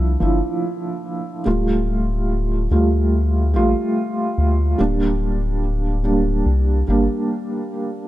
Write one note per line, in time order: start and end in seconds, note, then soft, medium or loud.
0.00 0.17 C2 loud
0.00 0.20 F3 medium
0.00 0.21 D4 medium
0.00 0.22 E4 medium
0.20 0.41 G1 medium
0.20 1.41 F3 medium
0.20 1.41 D4 medium
0.20 1.42 E4 medium
1.45 2.67 D1 loud
1.45 2.66 G3 medium
1.45 2.67 A3 medium
1.45 2.67 F4 medium
2.71 3.56 D2 medium
2.71 3.50 G3 medium
2.71 3.50 A3 medium
2.71 3.50 F4 medium
3.54 3.75 A1 medium
3.54 4.74 G3 medium
3.54 4.75 A3 medium
3.54 4.76 F4 loud
4.38 4.75 D2 medium
4.78 6.42 D1 loud
4.78 5.99 G3 medium
4.78 6.00 A#3 medium
4.78 6.00 D4 medium
6.04 6.83 G3 medium
6.04 6.83 A#3 medium
6.04 6.83 D4 medium
6.46 6.83 C2 loud
6.88 7.08 G1 medium
6.88 8.08 G3 medium
6.88 8.08 A#3 medium
6.88 8.08 D4 medium